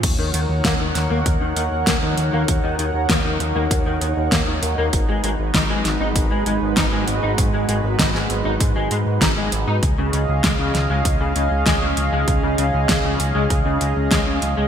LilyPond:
<<
  \new Staff \with { instrumentName = "Analog synth pad" } { \time 4/4 \key ees \minor \tempo 4 = 98 <ees' bes' des'' ges''>1~ | <ees' bes' des'' ges''>1 | <aes ges' ces''>1~ | <aes ges' ces''>1 |
<des' aes' ees'' f''>1~ | <des' aes' ees'' f''>1 | }
  \new Staff \with { instrumentName = "Clean electric guitar" } { \clef bass \time 4/4 \key ees \minor r16 ees16 ees16 r16 bes16 ees16 r16 bes16 r16 ees16 ees16 r16 bes16 ees16 r16 bes16 | r16 ees16 ees16 r16 bes16 ees16 r16 bes16 r16 ees16 ees16 r16 bes16 ees16 r16 bes16 | r16 aes16 aes16 r16 ees'16 aes16 r16 ees'16 r16 aes16 aes16 r16 ees'16 aes16 r16 ees'16 | r16 aes16 aes16 r16 ees'16 aes16 r16 ees'16 r16 aes16 aes16 r16 ees'16 aes16 r16 ees'16 |
r16 des16 des16 r16 aes16 des16 r16 aes16 r16 des16 des16 r16 aes16 des16 r16 aes16 | r16 des16 des16 r16 aes16 des16 r16 aes16 r16 des16 des16 r16 aes16 des16 r16 aes16 | }
  \new Staff \with { instrumentName = "Analog synth bass" } { \clef bass \time 4/4 \key ees \minor ees,16 ees,16 ees,16 ees,16 ees,16 ees,16 ees,16 ees,16 ees,16 ees,16 ees,16 ees,16 ees,16 ees,16 ees,16 ees,16 | ees,16 ees,16 ees,16 ees,16 ees,16 ees,16 ees,16 ees,16 ees,16 ees,16 ees,16 ees,16 ees,16 ees,16 ees,16 ees,16 | aes,,16 aes,,16 aes,,16 aes,,16 aes,,16 aes,,16 aes,,16 aes,,16 aes,,16 aes,,16 aes,,16 aes,,16 aes,,16 aes,,16 aes,,16 aes,,16 | aes,,16 aes,,16 aes,,16 aes,,16 aes,,16 aes,,16 aes,,16 aes,,16 aes,16 aes,,16 aes,16 aes,16 aes,,16 aes,,16 aes,,16 aes,16 |
des,16 des,16 des,16 des,16 des,16 des,16 des,16 des,16 des,16 des,16 des,16 des,16 des,16 des,16 des,16 des,16 | des,16 des,16 des,16 des,16 des,16 des,16 des,16 des,16 des,16 des,16 des,16 des,16 des,16 des,16 des,16 des,16 | }
  \new DrumStaff \with { instrumentName = "Drums" } \drummode { \time 4/4 <cymc hh bd>8 hh8 <hh bd sn>8 <hh sn>8 <hh bd>8 hh8 <hh bd sn>8 hh8 | <hh bd>8 hh8 <hh bd sn>8 hh8 <hh bd>8 hh8 <hh bd sn>8 hh8 | <hh bd>8 hh8 <hh bd sn>8 <hh sn>8 <hh bd>8 hh8 <hh bd sn>8 hh8 | <hh bd>8 hh8 <hh bd sn>16 sn16 hh8 <hh bd>8 hh8 <hh bd sn>8 hh8 |
<hh bd>8 hh8 <hh bd sn>8 <hh sn>8 <hh bd>8 hh8 <hh bd sn>8 hh8 | <hh bd>8 hh8 <hh bd sn>8 hh8 <hh bd>8 hh8 <hh bd sn>8 hh8 | }
>>